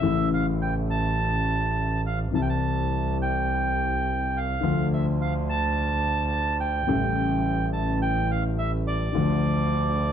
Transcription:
Already playing: bandoneon E5
0.01 double bass A1, grand piano A1 A2 C#3 E3 A3
0.05 grand piano E4
0.34 bandoneon F5
0.62 bandoneon G5
0.90 bandoneon A5
2.07 bandoneon F5
2.31 double bass C2, grand piano C2 C3 E3 G3 E4, bandoneon A5
2.42 bandoneon G5
2.49 bandoneon A5
3.22 bandoneon G5
4.37 bandoneon F5
4.62 grand piano D2 D3 F3 A3 F4, double bass D2
4.93 bandoneon E5
5.21 bandoneon F5
5.49 bandoneon A5
6.60 bandoneon G5
6.87 grand piano A1 A2 C#3 G3 A3 E4, double bass A1
7.73 bandoneon A5
8.02 bandoneon G5
8.31 bandoneon F5
8.59 bandoneon E5
8.87 bandoneon D5
9.12 double bass D2, grand piano D2 D3 F3 A3
9.17 grand piano F4

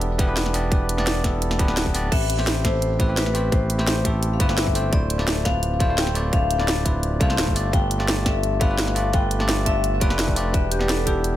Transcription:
Already playing: analog synth bass E1, tine electric piano B3 D4 E4 G4 A4 B4 D5
0.01 closed hi-hat
0.18 tine electric piano B3 D4 E4 G4 B4, kick, closed hi-hat
0.27 tine electric piano B3 D4 E4 G4 B4
0.37 snare, closed hi-hat
0.46 snare
0.53 tine electric piano B3 D4 E4 G4 D5, open hi-hat
0.71 analog synth bass E1, tine electric piano B3 D4 E4 G4 B4, kick, closed hi-hat
0.89 closed hi-hat
0.97 tine electric piano B3 D4 E4 G4 D5, snare
1.07 snare, closed hi-hat
1.24 tine electric piano B3 D4 E4 G4 A4, kick, snare, closed hi-hat
1.42 closed hi-hat
1.51 snare
1.58 analog synth bass D1, tine electric piano B3 D4 E4 G4 B4, kick, closed hi-hat
1.67 tine electric piano B3 D4 E4 G4 B4, snare
1.77 snare, closed hi-hat
1.86 kick
1.94 tine electric piano B3 D4 E4 G4 D5, open hi-hat
2.11 analog synth bass A1, tine electric piano A3 C4 E4 G4 B4, vibraphone E5, kick, closed hi-hat, crash
2.30 closed hi-hat
2.37 tine electric piano A3 C4 E4 G4 C5, snare
2.47 snare, closed hi-hat
2.64 tine electric piano A3 C4 E4 G4 A4, vibraphone C5, kick, snare, closed hi-hat
2.82 closed hi-hat
2.99 tine electric piano A3 C4 E4 G4 B4, kick, closed hi-hat
3.08 tine electric piano A3 C4 E4 G4 B4
3.17 vibraphone B4, snare, closed hi-hat
3.26 snare
3.34 tine electric piano A3 C4 E4 G4 C5, open hi-hat
3.51 analog synth bass A1, tine electric piano A3 C4 E4 G4 B4, vibraphone C5, kick, closed hi-hat
3.70 closed hi-hat
3.78 tine electric piano A3 C4 E4 G4 C5, snare
3.87 snare, closed hi-hat
4.04 tine electric piano A3 C4 E4 G4 A4, kick, closed hi-hat
4.23 closed hi-hat
4.33 vibraphone F5
4.39 analog synth bass G1, tine electric piano A3 C4 E4 G4 B4, vibraphone E5, kick, closed hi-hat
4.48 tine electric piano A3 C4 E4 G4 B4, snare
4.58 snare, closed hi-hat
4.67 kick
4.74 tine electric piano A3 C4 E4 G4 C5, open hi-hat
4.92 analog synth bass D1, tine electric piano A3 D4 E4 F4 C5, vibraphone D5, kick, closed hi-hat
5.10 closed hi-hat
5.18 tine electric piano A3 D4 E4 F4 D5, snare
5.28 snare, closed hi-hat
5.44 tine electric piano A3 C4 D4 F4 B4, vibraphone F5, kick, snare, closed hi-hat
5.63 closed hi-hat
5.79 tine electric piano A3 D4 E4 F4 C5, kick, closed hi-hat
5.88 tine electric piano A3 D4 E4 F4 C5
5.98 vibraphone G5, snare, closed hi-hat
6.07 snare
6.14 tine electric piano A3 D4 E4 F4 D5, open hi-hat
6.32 analog synth bass D1, tine electric piano A3 D4 E4 F4 C5, vibraphone F5, kick, closed hi-hat
6.51 closed hi-hat
6.59 tine electric piano A3 D4 E4 F4 D5, snare
6.68 snare, closed hi-hat
6.85 tine electric piano A3 D4 E4 F4 B4, kick, closed hi-hat
7.03 closed hi-hat
7.20 analog synth bass C2, tine electric piano A3 D4 E4 F4 C5, vibraphone F5, kick, closed hi-hat
7.29 tine electric piano A3 D4 E4 F4 C5, snare
7.38 analog synth bass D1, snare, closed hi-hat
7.47 analog synth bass G1, kick
7.55 tine electric piano A3 D4 F4 G4 D5, open hi-hat
7.72 analog synth bass G1, tine electric piano A3 D4 F4 G4 B4, vibraphone G5, kick, closed hi-hat
7.91 closed hi-hat
7.99 tine electric piano A3 D4 F4 G4 D5, snare
8.08 snare, closed hi-hat
8.25 tine electric piano A3 D4 F4 G4 A4, vibraphone E5, kick, snare, closed hi-hat
8.43 closed hi-hat
8.60 tine electric piano A3 D4 F4 G4 B4, vibraphone F5, kick, closed hi-hat
8.69 tine electric piano A3 D4 F4 G4 B4
8.78 snare, closed hi-hat
8.87 snare
8.95 tine electric piano A3 D4 F4 G4 D5, open hi-hat
9.13 analog synth bass G1, tine electric piano A3 D4 F4 G4 B4, vibraphone G5, kick, closed hi-hat
9.31 closed hi-hat
9.39 tine electric piano A3 D4 F4 G4 D5, snare
9.49 snare, closed hi-hat
9.65 tine electric piano A3 D4 F4 G4 A4, vibraphone E5, kick, closed hi-hat
9.84 closed hi-hat
9.95 vibraphone E5
10.00 analog synth bass F1, tine electric piano A3 D4 F4 G4 B4, vibraphone D5, kick, closed hi-hat
10.09 tine electric piano A3 D4 F4 G4 B4, snare
10.19 snare, closed hi-hat
10.28 kick
10.35 tine electric piano A3 D4 F4 G4 D5, open hi-hat
10.53 analog synth bass E1, tine electric piano B3 D4 E4 G4 B4, vibraphone E5, kick, closed hi-hat
10.72 vibraphone G4, closed hi-hat
10.79 tine electric piano B3 D4 E4 G4 D5, snare
10.89 vibraphone A4, snare, closed hi-hat
11.05 tine electric piano B3 D4 E4 G4 A4, vibraphone G4, kick, closed hi-hat
11.24 closed hi-hat

